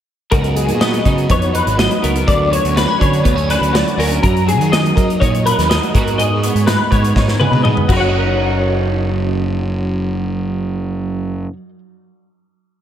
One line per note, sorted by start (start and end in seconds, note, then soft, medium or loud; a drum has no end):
0.31 0.69 C#2 medium
0.31 0.56 C#3 medium
0.31 1.77 F#3 medium
0.31 0.81 B3 medium
0.31 1.04 D#4 medium
0.31 4.25 F#4 medium
0.31 0.56 A#4 medium
0.31 kick loud
0.31 closed hi-hat medium
0.44 closed hi-hat soft
0.56 0.81 G#4 medium
0.56 closed hi-hat medium
0.68 0.99 A#2 medium
0.68 closed hi-hat soft
0.81 1.29 B3 medium
0.81 1.30 D#5 medium
0.81 snare loud
0.81 closed hi-hat medium
0.94 closed hi-hat soft
1.05 1.26 C#3 medium
1.05 1.52 D#4 medium
1.05 kick medium
1.05 closed hi-hat medium
1.18 closed hi-hat soft
1.29 1.60 F2 medium
1.29 2.01 B3 medium
1.29 1.55 C#5 medium
1.29 kick medium
1.29 closed hi-hat medium
1.42 closed hi-hat soft
1.54 2.24 D#4 medium
1.54 1.78 B4 medium
1.54 closed hi-hat medium
1.66 1.87 G#1 medium
1.66 closed hi-hat soft
1.77 2.50 F#3 medium
1.77 2.03 D#5 medium
1.77 snare loud
1.77 closed hi-hat medium
1.91 closed hi-hat soft
2.02 2.24 C#2 medium
2.02 2.74 B3 medium
2.02 2.28 A#4 medium
2.02 closed hi-hat medium
2.16 closed hi-hat soft
2.27 2.58 D2 medium
2.27 4.20 D3 medium
2.27 2.52 D5 medium
2.27 kick medium
2.27 closed hi-hat medium
2.50 3.72 F#3 medium
2.50 2.77 C#5 medium
2.50 closed hi-hat medium
2.64 2.85 D2 medium
2.64 closed hi-hat soft
2.75 2.87 B3 medium
2.75 3.01 B4 medium
2.75 snare loud
2.75 closed hi-hat medium
2.87 3.23 C#4 soft
2.99 3.21 D3 medium
2.99 3.48 D4 medium
2.99 3.50 C#5 medium
2.99 kick medium
2.99 closed hi-hat soft
3.13 closed hi-hat soft
3.24 3.56 D2 medium
3.24 3.36 B3 medium
3.24 kick medium
3.24 closed hi-hat medium
3.36 3.97 C#4 medium
3.36 closed hi-hat soft
3.49 4.20 D4 medium
3.49 3.75 B4 medium
3.49 snare soft
3.49 closed hi-hat medium
3.61 3.82 D2 medium
3.61 closed hi-hat soft
3.73 4.46 F#3 medium
3.73 3.99 D5 medium
3.73 snare loud
3.73 closed hi-hat medium
3.88 closed hi-hat soft
3.97 4.18 D2 medium
3.97 4.20 C#4 medium
3.97 4.22 A#4 medium
3.97 open hi-hat medium
4.12 closed hi-hat soft
4.22 5.93 F#2 medium
4.22 4.59 F#2 medium
4.22 4.48 A#4 medium
4.22 kick medium
4.22 closed hi-hat medium
4.37 closed hi-hat soft
4.46 5.68 F#3 soft
4.46 4.72 G#4 medium
4.46 closed hi-hat medium
4.59 4.90 D#3 medium
4.59 closed hi-hat soft
4.72 5.21 D#4 medium
4.72 5.20 D#5 medium
4.72 snare loud
4.72 closed hi-hat medium
4.86 closed hi-hat soft
4.96 5.17 F#3 medium
4.96 5.45 A#4 medium
4.96 kick medium
4.96 closed hi-hat medium
5.10 closed hi-hat soft
5.20 5.52 A#2 medium
5.20 5.95 D#4 medium
5.20 5.45 C#5 medium
5.20 kick medium
5.20 closed hi-hat medium
5.35 closed hi-hat soft
5.46 5.96 A#4 medium
5.46 5.69 B4 medium
5.46 closed hi-hat medium
5.58 5.78 D#2 medium
5.58 snare soft
5.58 closed hi-hat soft
5.68 5.94 F#3 medium
5.68 5.94 D#5 medium
5.68 snare loud
5.68 closed hi-hat medium
5.83 closed hi-hat soft
5.93 7.86 G#2 medium
5.93 6.15 G#2 medium
5.93 6.18 G#3 medium
5.93 6.43 B3 soft
5.93 6.67 D#4 soft
5.93 7.90 F#4 medium
5.93 6.19 A#4 medium
5.93 kick medium
5.93 closed hi-hat medium
6.08 closed hi-hat soft
6.18 6.49 G#2 medium
6.18 7.40 G#3 medium
6.18 6.43 D#5 medium
6.18 closed hi-hat medium
6.43 6.92 B3 medium
6.43 6.67 C#5 medium
6.43 closed hi-hat medium
6.55 6.75 G#2 medium
6.55 closed hi-hat soft
6.67 7.15 D#4 medium
6.67 6.91 B4 medium
6.67 snare loud
6.67 closed hi-hat medium
6.91 7.12 G#2 medium
6.91 7.64 B3 medium
6.91 7.39 C#5 medium
6.91 kick medium
6.91 closed hi-hat soft
7.04 closed hi-hat soft
7.15 7.46 G#2 medium
7.15 7.86 D#4 medium
7.15 kick medium
7.15 snare soft
7.28 snare soft
7.40 7.86 G#3 medium
7.40 7.63 B4 medium
7.40 high tom medium
7.51 7.72 B2 medium
7.51 high tom medium
7.63 7.89 B3 medium
7.63 7.88 D#5 medium
7.63 mid tom medium
7.77 mid tom medium
7.88 11.45 F#1 medium
7.88 11.48 F#2 medium
7.88 7.92 F#4 medium
7.88 kick medium
7.88 crash medium
7.92 11.53 A#4 medium
7.97 11.58 F#3 medium
7.97 11.53 C#5 medium
7.97 11.56 F#5 medium
8.08 11.68 D#4 medium
8.18 11.78 A#4 medium